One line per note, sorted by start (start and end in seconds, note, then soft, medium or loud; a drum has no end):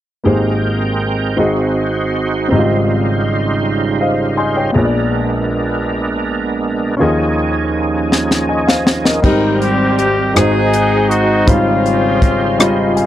0.24 1.34 G#1 soft
0.24 1.34 G#2 soft
0.24 1.36 G#3 soft
0.24 1.37 A#3 soft
0.24 1.38 C4 soft
0.24 1.38 G4 soft
0.24 1.37 G#4 soft
0.24 1.38 A#4 medium
0.24 1.39 C5 soft
0.24 1.38 G5 soft
1.37 2.47 G#1 soft
1.37 2.47 G#2 soft
1.37 2.50 G#3 soft
1.37 2.47 C4 soft
1.37 2.49 D#4 soft
1.37 2.50 F#4 soft
1.37 2.51 G#4 soft
1.37 2.49 C5 medium
1.37 2.51 D#5 medium
2.48 4.71 G#1 soft
2.48 4.71 G#2 soft
2.48 4.72 G#2 soft
2.48 4.71 C#3 soft
2.48 4.71 G3 soft
2.48 4.70 C4 soft
2.48 4.71 D#4 soft
2.48 2.57 D#4 soft
2.48 4.71 F4 soft
2.48 4.71 C5 medium
2.53 4.72 G4 soft
2.53 4.00 D#5 soft
2.57 4.74 F4 soft
4.01 4.36 C5 soft
4.01 4.35 D#5 soft
4.01 4.36 F5 soft
4.37 4.56 D#5 soft
4.37 4.55 G#5 soft
4.37 4.72 C6 soft
4.57 4.77 C#5 soft
4.57 4.92 G5 soft
4.72 6.95 A#1 soft
4.72 6.95 A#2 soft
4.72 6.95 G#3 medium
4.72 6.94 B3 soft
4.72 6.95 B3 soft
4.72 6.95 D4 soft
4.72 6.95 G#4 soft
4.72 6.95 A#4 medium
4.76 6.96 A#4 soft
4.76 4.83 C#5 soft
4.85 7.00 D5 medium
6.97 9.20 D#2 medium
6.97 9.20 D#3 soft
6.97 9.18 C#4 medium
6.97 9.19 F4 soft
7.01 9.20 F3 medium
7.01 9.20 C#4 soft
7.01 9.21 D#4 soft
7.01 9.20 G#4 soft
7.01 9.20 G#4 medium
7.01 8.48 D#5 medium
8.12 snare soft
8.31 snare soft
8.49 8.67 D#5 soft
8.49 8.67 G#5 soft
8.67 9.03 C5 soft
8.67 9.03 F5 medium
8.67 snare soft
8.87 snare medium
9.04 9.24 A#4 soft
9.04 9.40 D#5 soft
9.04 snare medium
9.22 10.32 G#1 soft
9.22 10.32 G#2 soft
9.22 9.96 G3 medium
9.22 10.35 G3 soft
9.22 10.32 G3 medium
9.22 9.30 A#3 soft
9.22 9.97 C4 medium
9.22 10.32 C4 medium
9.22 9.59 D#4 medium
9.22 10.36 G4 soft
9.22 9.97 G4 soft
9.22 10.36 A#4 medium
9.22 9.98 A#4 medium
9.22 kick medium
9.22 crash medium
9.31 10.39 C4 soft
9.62 9.97 G4 medium
9.62 closed hi-hat soft
9.98 10.33 G4 medium
9.98 closed hi-hat soft
10.34 11.44 G#1 soft
10.34 11.44 G#2 soft
10.34 11.08 G#3 soft
10.34 11.48 G#3 medium
10.34 11.46 D#4 soft
10.34 11.09 D#4 soft
10.34 11.47 F#4 soft
10.34 11.09 F#4 soft
10.34 11.11 G#4 medium
10.34 10.42 B4 soft
10.34 11.10 C5 medium
10.34 cross-stick medium
10.34 closed hi-hat medium
10.39 11.45 C4 medium
10.39 11.45 D#4 medium
10.39 11.46 C5 medium
10.73 closed hi-hat soft
11.10 11.47 F#4 medium
11.10 closed hi-hat soft
11.46 13.06 G#1 soft
11.46 13.06 G#2 soft
11.46 13.06 C#3 soft
11.46 12.20 G3 medium
11.46 13.06 G3 soft
11.46 13.06 C#4 medium
11.46 13.06 D#4 soft
11.46 12.21 D#4 medium
11.46 11.53 E4 soft
11.46 13.06 F4 medium
11.46 12.21 F4 medium
11.46 13.06 C5 medium
11.46 12.22 C5 medium
11.46 kick medium
11.46 closed hi-hat medium
11.50 13.06 C4 medium
11.50 13.06 F4 soft
11.86 closed hi-hat soft
12.22 kick medium
12.22 closed hi-hat soft
12.58 13.06 G3 medium
12.58 13.06 D#4 medium
12.58 13.06 F4 medium
12.58 12.67 C#5 medium
12.58 cross-stick medium
12.58 closed hi-hat medium
12.68 13.06 D#5 medium
12.96 13.06 G#5 medium
12.96 closed hi-hat soft